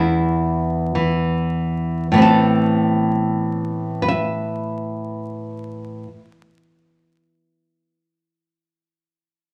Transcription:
Already playing: E2 E3 C4 E4
0.95 E3
2.12 A2 E3
2.16 B3 C4
2.22 A4
4.02 B4
4.08 E5

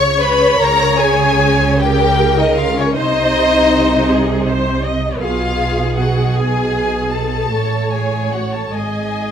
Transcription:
Already playing: C#2 C#3 C#5 C#6
0.21 B4 B5
0.59 C#2 C#3 A#4 A#5
1.00 G#4 G#5
1.79 G4 A#4 G5
2.40 D#4 D#5
2.58 F4 F5
2.78 C#4 C#5
2.95 C2 C3 D#4 C5 D#5
4.10 G#4
4.47 C5
4.85 D#5
5.22 B1 B2 F4 G#4 F5
5.98 F#4 F#5
6.36 G#4 G#5
7.13 A4 A5
7.53 A1 A2 C#5
7.94 G#4 G#5
8.34 F#4 F#5
8.54 A4 A5
8.73 G#1 G#2 G#4 D#5 G#5

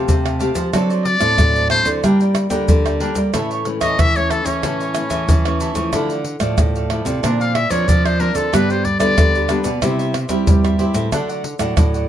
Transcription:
Already playing: A3 C4 G4 C5 F5 A5
0.08 C3, pandeiro, shaker, surdo
0.25 C5 F5 A5, pandeiro, tamborim, shaker
0.39 A3 C4 G4 C5 F5 A5, pandeiro, shaker
0.55 F3 C5 F5 A5, pandeiro, shaker, surdo
0.73 F#3 C4 D4 F#4 A4 C5 D5, pandeiro, tamborim, shaker, surdo
0.90 A4 C5 D5, pandeiro, shaker
1.05 D5, muted cavaquinho stroke, pandeiro
1.20 A2 C4 D4 A4 C5 D5, pandeiro, tamborim, shaker, surdo
1.38 A2 F#3, pandeiro, tamborim, shaker, surdo
1.55 A4 C5 D5, pandeiro, shaker
1.70 C4 D4 F#4 A4 C5 D5, pandeiro, tamborim
1.85 D3 A4 C5 D5, pandeiro, shaker, surdo
2.03 G2 G3 A#3 D4 A#4 D5 G5, pandeiro, tamborim, shaker, surdo
2.20 A#4 D5 G5, pandeiro, shaker
2.35 pandeiro, tamborim, shaker
2.50 D3 G3 A#3 D4 A#4 D5 G5, pandeiro, shaker, surdo
2.68 D3, pandeiro, shaker, surdo
2.86 A#4 D5 G5, pandeiro, tamborim, shaker
3.00 G3 A#3 D4 A#4 D5 G5, pandeiro
3.15 G3 A#4 D5 G5, pandeiro, shaker, surdo
3.33 A2 E3 A3 C#4 E4 A4 C#5 E5, pandeiro, tamborim, shaker, surdo
3.51 A4 C#5 E5, pandeiro, shaker
3.65 E3 A3 C#4, muted cavaquinho stroke, pandeiro
3.81 E3 A4 C#5 D#5 E5, pandeiro, tamborim, shaker, surdo
3.99 E3 E5, pandeiro, tamborim, shaker, surdo
4.16 E3 A3 C#4 A4 C#5 E5, pandeiro, shaker
4.30 E4 A4 C#5 E5, pandeiro, tamborim, shaker
4.46 E3 C#4 A4 C#5 E5, pandeiro, shaker, surdo
4.63 A2 E3 A3 C#4 E4 A4 C#5 E5, pandeiro, tamborim, shaker, surdo
4.80 A4 C#5 E5, pandeiro, shaker
4.95 E3 A3 C#4, pandeiro, tamborim, shaker
5.10 E3 A4 C#5 E5, pandeiro, shaker, surdo
5.29 E3, pandeiro, shaker, surdo
5.45 E3 A3 C#4 A4 C#5 E5, pandeiro, tamborim, shaker
5.60 E4 A4 C#5 E5, pandeiro, shaker
5.75 E3 F3 A3 E4 A4 C#5 E5, pandeiro, shaker, surdo
5.93 D3 E4 A4 D5 F5, pandeiro, tamborim, shaker, surdo
6.10 A4 D5 F5, pandeiro, shaker
6.25 muted cavaquinho stroke, pandeiro
6.40 A2 F3 A3 A4 D5 F5, pandeiro, tamborim, shaker, surdo
6.58 A2, pandeiro, tamborim, shaker, surdo
6.75 A4 D5 F5, pandeiro, shaker
6.90 F3 A3 E4 A4 D5 F5, pandeiro, tamborim
7.05 C3 A4 D5 F5, pandeiro, shaker, surdo
7.23 A#2 F3 C4 D4 A#4 C5 D5, pandeiro, tamborim, shaker, surdo
7.40 A#4 C5 D5 F5, pandeiro, shaker
7.55 E5, pandeiro, tamborim
7.70 F3 C4 D4 A#4 C5 C#5 D5, pandeiro, shaker, surdo
7.88 F3 D5, pandeiro, shaker, surdo
8.05 A#4 C5 D5, pandeiro, tamborim, shaker
8.19 F3 C4 D4 A#4 C5 D5, pandeiro
8.34 D3 A4 A#4 C5 D5, pandeiro, shaker, surdo
8.52 G2 G3 B3 D4 G4 B4 D5, pandeiro, tamborim, shaker, surdo
8.69 G4 B4 C5 D5, pandeiro, shaker
8.84 D5, muted cavaquinho stroke, pandeiro, surdo
8.99 D3 G3 B3 D4 G4 B4 D5, pandeiro, tamborim, shaker, surdo
9.18 D3, pandeiro, tamborim, shaker, surdo
9.34 G4 B4 D5, pandeiro, shaker
9.49 G3 B3 D4 G4 B4 D5, pandeiro, tamborim, shaker
9.64 B2 G4 B4 D5, pandeiro, shaker, surdo
9.82 C3 G3 C4 E4 G4 C5 E5, pandeiro, tamborim, shaker, surdo
9.99 G4 C5 E5, pandeiro, shaker
10.14 pandeiro, tamborim
10.29 G3 C4 E4 G4 C5 E5, pandeiro, shaker, surdo
10.47 G2 G3, pandeiro, shaker, surdo
10.65 G4 C5 E5, pandeiro, tamborim, shaker
10.78 G3 C4 E4 G4 C5 E5, pandeiro
10.94 A2 G4 C5 E5, pandeiro, shaker, surdo
11.12 D3 F#3 A3 D4 A4 D5 F#5, pandeiro, tamborim, shaker, surdo
11.29 A4 D5 F#5, pandeiro, shaker
11.44 muted cavaquinho stroke, pandeiro
11.59 A2 F#3 A3 D4 A4 D5 F#5, pandeiro, tamborim, shaker, surdo
11.77 A2, pandeiro, tamborim, shaker, surdo
11.94 A4 D5 F#5, pandeiro, shaker

